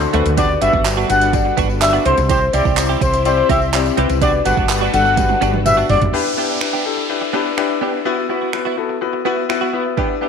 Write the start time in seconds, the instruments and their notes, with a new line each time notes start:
Already playing: string machine D3 A3 C4 E4 F#4
0.01 muted clean electric guitar stroke, tambourine
0.13 fretless electric bass D2, clean electric guitar A3 C4 F#4, grand piano D4 F#4 A4 B4, closed hi-hat
0.25 fretless electric bass D2, muted clean electric guitar stroke, closed hi-hat
0.37 string machine G3 D4 A4 B4, clean electric guitar B3 D4 F#4, grand piano D4 F#4 G4 B4, analog synth lead D5, kick, closed hi-hat, tambourine
0.49 muted clean electric guitar stroke
0.61 fretless electric bass G1, clean electric guitar B3 D4 F#4, grand piano D4 F#4 G4 B4, analog synth lead E5, closed hi-hat, tambourine
0.73 fretless electric bass G1, clean electric guitar B3 D4 F#4, kick
0.85 grand piano D4 F#4 G4 B4, muted clean electric guitar stroke, clap, closed hi-hat, tambourine
0.97 clean electric guitar B3 D4 F#4
1.09 fretless electric bass G1, grand piano D4 F#4 G4 B4, analog synth lead F#5, muted clean electric guitar stroke, closed hi-hat, tambourine
1.21 muted clean electric guitar stroke, closed hi-hat, tambourine
1.33 grand piano D4 F#4 G4 D5, muted clean electric guitar stroke, kick, closed hi-hat, tambourine
1.45 muted clean electric guitar stroke
1.57 fretless electric bass G1, clean electric guitar B3 D4 F#4, grand piano D4 F#4 G4 B4, kick, closed hi-hat, tambourine
1.69 muted clean electric guitar stroke, tambourine
1.81 grand piano D4 F#4 G4 D5, analog synth lead E5, muted clean electric guitar stroke, clap, closed hi-hat, tambourine
1.93 clean electric guitar B3 D4 F#4, tambourine
2.05 fretless electric bass C2, clean electric guitar C4 E4 G4, grand piano C4 E4 G4 C5, string machine C4 E4 G4, analog synth lead C5, closed hi-hat
2.17 fretless electric bass C2, muted clean electric guitar stroke, closed hi-hat, tambourine
2.29 clean electric guitar C4 E4 G4, analog synth lead C5, kick, closed hi-hat, tambourine
2.41 muted clean electric guitar stroke
2.53 fretless electric bass C2, clean electric guitar C4 E4 G4, grand piano C4 E4 G4 C5, analog synth lead D5, closed hi-hat, tambourine
2.65 fretless electric bass C2, clean electric guitar C4 E4 G4, kick, tambourine
2.77 grand piano C4 E4 G4 C5, muted clean electric guitar stroke, clap, closed hi-hat, tambourine
2.89 clean electric guitar C4 E4 G4
3.01 fretless electric bass C2, grand piano C4 E4 G4 C5, analog synth lead C5, muted clean electric guitar stroke, kick, closed hi-hat, tambourine
3.13 muted clean electric guitar stroke, closed hi-hat, tambourine
3.25 grand piano C4 E4 G4 D5, analog synth lead C5, closed hi-hat, tambourine
3.37 muted clean electric guitar stroke
3.49 fretless electric bass C2, clean electric guitar C4 E4 G4, grand piano C4 E4 G4 C5, analog synth lead E5, kick, closed hi-hat, tambourine
3.61 muted clean electric guitar stroke, tambourine
3.73 grand piano C4 E4 G4 D5, muted clean electric guitar stroke, clap, closed hi-hat, tambourine
3.85 muted clean electric guitar stroke, tambourine
3.97 fretless electric bass C2, clean electric guitar C4 E4 G4, grand piano C4 E4 G4 B4, closed hi-hat
4.09 fretless electric bass C2, muted clean electric guitar stroke, closed hi-hat, tambourine
4.21 string machine G3 D4 F#4 A4 B4, clean electric guitar B3 D4 F#4, grand piano D4 F#4 G4 B4, analog synth lead D5, kick, closed hi-hat, tambourine
4.33 muted clean electric guitar stroke
4.45 fretless electric bass G1, clean electric guitar B3 D4 F#4, grand piano D4 F#4 G4 B4, analog synth lead F#5, closed hi-hat, tambourine
4.57 fretless electric bass G1, clean electric guitar B3 D4 F#4, kick
4.69 grand piano D4 F#4 G4 B4, muted clean electric guitar stroke, clap, closed hi-hat, tambourine
4.81 clean electric guitar B3 D4 F#4
4.93 fretless electric bass G1, grand piano D4 F#4 G4 A4, analog synth lead F#5, muted clean electric guitar stroke, closed hi-hat, tambourine
5.05 muted clean electric guitar stroke, tambourine
5.17 grand piano D4 F#4 G4 B4, kick, closed hi-hat, high tom, tambourine
5.29 muted clean electric guitar stroke, high tom
5.41 fretless electric bass G1, clean electric guitar B3 D4 F#4, grand piano D4 F#4 G4 B4, closed hi-hat, tambourine
5.53 muted clean electric guitar stroke, mid tom
5.65 grand piano D4 F#4 G4 B4, analog synth lead E5, muted clean electric guitar stroke, closed hi-hat, mid tom, tambourine
5.77 clean electric guitar B3 D4 F#4, tambourine
5.89 fretless electric bass G1, clean electric guitar B3 D4 F#4, grand piano D4 F#4 G4 D5, analog synth lead D5, floor tom, open hi-hat
6.01 fretless electric bass G1, muted clean electric guitar stroke, closed hi-hat, floor tom
6.13 clean electric guitar B3 D4 G4, grand piano D4 E4 G4 B4, downlifter
6.25 muted clean electric guitar stroke
6.37 clean electric guitar B3 D4 G4, grand piano D4 E4 G4 B4
6.49 clean electric guitar B3 D4 G4
6.61 grand piano D4 E4 G4 B4, finger snap, muted clean electric guitar stroke
6.73 clean electric guitar B3 D4 G4
6.85 grand piano D4 E4 G4 A4, muted clean electric guitar stroke
6.97 muted clean electric guitar stroke
7.09 grand piano D4 E4 G4 B4
7.21 muted clean electric guitar stroke
7.33 clean electric guitar B3 D4 G4, grand piano D4 E4 G4 B4
7.45 muted clean electric guitar stroke
7.57 grand piano D4 E4 G4 B4, finger snap, muted clean electric guitar stroke
7.69 muted clean electric guitar stroke
7.81 clean electric guitar B3 D4 G4, grand piano D4 E4 G4 B4
7.93 muted clean electric guitar stroke
8.05 clean electric guitar B3 E4 F#4, grand piano B3 E4 F#4 B4
8.17 muted clean electric guitar stroke
8.29 clean electric guitar B3 E4 F#4, grand piano B3 E4 F#4 B4
8.41 clean electric guitar B3 E4 F#4
8.53 grand piano B3 E4 F#4 B4, finger snap, muted clean electric guitar stroke
8.65 clean electric guitar B3 E4 F#4
8.77 grand piano B3 E4 F#4 A4, muted clean electric guitar stroke
8.89 muted clean electric guitar stroke
9.01 grand piano B3 E4 F#4 B4, muted clean electric guitar stroke
9.13 muted clean electric guitar stroke
9.25 clean electric guitar B3 E4 F#4, grand piano B3 E4 F#4 B4
9.37 muted clean electric guitar stroke
9.49 grand piano B3 E4 F#4 B4, finger snap, muted clean electric guitar stroke
9.61 clean electric guitar B3 E4 F#4
9.73 clean electric guitar B3 E4 F#4, grand piano B3 E4 F#4 B4
9.85 muted clean electric guitar stroke
9.97 clean electric guitar B3 D4 G4, grand piano D4 E4 G4 B4, kick
10.09 muted clean electric guitar stroke
10.21 clean electric guitar B3 D4 G4, grand piano D4 E4 G4 B4